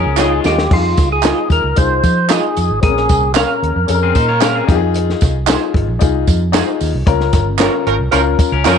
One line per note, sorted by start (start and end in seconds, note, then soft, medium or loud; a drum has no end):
0.00 0.18 C#4 medium
0.00 0.41 G#4 medium
0.00 0.17 A#4 medium
0.06 0.39 C#2 medium
0.17 0.31 C4 medium
0.17 0.55 D#4 medium
0.17 0.31 F4 medium
0.17 0.55 F4 medium
0.17 0.31 G#4 medium
0.17 0.56 C#5 medium
0.17 0.32 D#5 medium
0.17 snare medium
0.17 clap medium
0.17 tambourine medium
0.32 0.70 G#3 medium
0.32 0.69 F4 medium
0.44 0.67 D#2 medium
0.44 0.55 F4 medium
0.44 0.73 G4 medium
0.44 0.55 G#4 medium
0.44 0.56 D#5 medium
0.44 snare medium
0.44 tambourine medium
0.58 snare medium
0.70 0.94 F2 medium
0.70 1.08 D#4 medium
0.70 1.08 F4 medium
0.70 1.09 F4 medium
0.70 1.09 G#4 medium
0.70 kick loud
0.70 crash medium
0.97 1.31 C#2 medium
0.97 kick medium
0.97 snare soft
0.97 closed hi-hat medium
0.97 tambourine medium
1.12 1.49 G#4 loud
1.23 1.61 D#4 medium
1.23 1.37 F4 medium
1.23 1.61 F4 medium
1.23 1.38 G#4 medium
1.23 1.62 G#4 medium
1.23 1.38 D#5 medium
1.23 snare loud
1.23 clap loud
1.23 closed hi-hat medium
1.23 tambourine medium
1.50 1.61 D#2 medium
1.50 1.79 A#4 medium
1.50 kick medium
1.50 closed hi-hat medium
1.50 tambourine soft
1.64 1.75 C#2 medium
1.76 2.00 C2 medium
1.76 2.14 D#4 medium
1.76 2.15 F4 medium
1.76 2.15 G#4 medium
1.76 2.32 C5 medium
1.76 kick loud
1.76 closed hi-hat loud
1.76 tambourine medium
2.03 2.37 F3 medium
2.03 kick medium
2.03 closed hi-hat medium
2.03 tambourine medium
2.28 2.67 D#4 medium
2.28 2.67 F4 medium
2.28 2.43 F4 medium
2.28 2.68 G#4 medium
2.28 2.44 G#4 medium
2.28 2.80 G#4 medium
2.28 2.44 D#5 medium
2.28 snare medium
2.28 clap medium
2.28 closed hi-hat medium
2.28 tambourine medium
2.57 2.68 F2 medium
2.57 closed hi-hat medium
2.57 tambourine medium
2.70 2.81 G#1 medium
2.81 3.05 A#1 medium
2.81 3.58 A#2 medium
2.81 2.89 C4 medium
2.81 3.20 G#4 medium
2.81 3.33 G#4 loud
2.81 3.21 A#4 medium
2.81 kick loud
2.81 closed hi-hat loud
2.81 tambourine soft
2.88 3.23 C#4 medium
2.97 snare soft
3.09 3.43 C2 medium
3.09 kick medium
3.09 closed hi-hat medium
3.09 tambourine medium
3.35 3.73 C#4 medium
3.35 3.49 G#4 medium
3.35 3.73 G#4 medium
3.35 3.74 A#4 medium
3.35 4.65 A#4 medium
3.35 3.50 C#5 medium
3.35 3.50 F5 medium
3.35 snare loud
3.35 clap medium
3.35 closed hi-hat medium
3.35 tambourine medium
3.63 3.74 D#2 medium
3.63 closed hi-hat medium
3.76 3.87 F2 loud
3.87 4.11 F2 medium
3.87 4.25 C#4 medium
3.87 4.26 G#4 medium
3.87 3.95 A4 medium
3.87 closed hi-hat medium
3.87 tambourine medium
3.95 4.30 A#4 medium
4.03 4.15 C4 medium
4.03 4.15 G#4 medium
4.15 4.60 A#2 loud
4.15 4.29 D#4 medium
4.15 4.28 C5 medium
4.15 kick medium
4.15 closed hi-hat medium
4.15 tambourine medium
4.29 4.42 F4 medium
4.29 4.41 C#5 medium
4.40 4.68 C#4 medium
4.40 4.55 C#4 medium
4.40 4.68 G#4 medium
4.40 4.55 G#4 medium
4.40 4.55 A#4 medium
4.40 4.69 A#4 medium
4.40 4.56 C#5 medium
4.40 4.56 F5 loud
4.40 snare loud
4.40 clap medium
4.40 closed hi-hat medium
4.40 tambourine medium
4.55 4.81 C4 medium
4.55 4.80 G#4 medium
4.67 5.13 F2 medium
4.67 5.32 D#4 loud
4.67 5.32 F4 medium
4.67 4.75 G4 medium
4.67 kick loud
4.67 closed hi-hat medium
4.67 tambourine medium
4.75 5.35 G#4 loud
4.94 closed hi-hat loud
4.94 tambourine soft
5.10 snare soft
5.21 5.55 C2 medium
5.21 kick loud
5.21 snare soft
5.21 closed hi-hat medium
5.21 tambourine medium
5.46 5.85 D#4 medium
5.46 5.61 D#4 medium
5.46 5.85 F4 medium
5.46 5.86 G#4 medium
5.46 5.62 G#4 medium
5.46 5.62 C5 medium
5.46 snare loud
5.46 clap loud
5.46 closed hi-hat medium
5.46 tambourine loud
5.74 5.86 G#1 medium
5.74 kick medium
5.74 closed hi-hat medium
5.88 5.99 A#1 medium
5.99 6.24 C2 medium
5.99 6.38 D#4 medium
5.99 6.38 F4 medium
5.99 6.39 G#4 medium
5.99 kick loud
5.99 closed hi-hat medium
5.99 tambourine medium
6.27 6.61 F2 loud
6.27 kick medium
6.27 closed hi-hat medium
6.27 tambourine medium
6.52 6.91 D#4 loud
6.52 6.67 D#4 medium
6.52 6.91 F4 medium
6.52 6.91 G#4 loud
6.52 6.68 G#4 medium
6.52 6.68 C5 medium
6.52 snare loud
6.52 clap medium
6.52 closed hi-hat medium
6.52 tambourine medium
6.81 6.92 D#2 medium
6.81 open hi-hat medium
6.81 tambourine medium
6.94 7.05 C2 medium
7.06 7.29 C#2 loud
7.06 7.82 C#3 medium
7.06 7.44 C#4 medium
7.06 7.44 F4 medium
7.06 7.45 A#4 loud
7.06 kick loud
7.06 closed hi-hat loud
7.06 tambourine soft
7.20 snare soft
7.33 7.67 G1 medium
7.33 kick loud
7.33 snare soft
7.33 closed hi-hat medium
7.33 tambourine medium
7.59 7.71 F3 medium
7.59 7.71 C#4 medium
7.59 7.97 C#4 medium
7.59 7.73 F4 medium
7.59 7.97 F4 medium
7.59 7.71 A#4 medium
7.59 7.73 A#4 medium
7.59 7.98 A#4 medium
7.59 7.74 C#5 medium
7.59 snare loud
7.59 clap loud
7.59 closed hi-hat loud
7.59 tambourine medium
7.86 7.98 G#1 medium
7.86 7.95 F3 medium
7.86 7.95 C#4 medium
7.86 7.95 A#4 loud
7.86 closed hi-hat medium
8.00 8.11 C2 medium
8.11 8.35 C#2 medium
8.11 8.20 F3 loud
8.11 8.50 C#4 medium
8.11 8.20 C#4 medium
8.11 8.19 E4 medium
8.11 8.20 A#4 loud
8.11 8.50 A#4 loud
8.11 closed hi-hat loud
8.11 tambourine medium
8.19 8.53 F4 medium
8.39 muted fingered electric bass stroke soft
8.39 kick medium
8.39 closed hi-hat medium
8.39 tambourine medium
8.52 8.63 C#2 loud
8.52 8.65 C#4 medium
8.52 8.65 A#4 medium
8.65 8.78 F2 medium
8.65 8.78 F3 loud
8.65 8.78 C4 medium
8.65 8.78 C#4 medium
8.65 8.78 C#4 loud
8.65 8.78 F4 medium
8.65 8.78 G#4 medium
8.65 8.78 A#4 medium
8.65 8.78 A#4 loud
8.65 8.78 C#5 medium
8.65 snare medium
8.65 clap medium
8.65 tambourine medium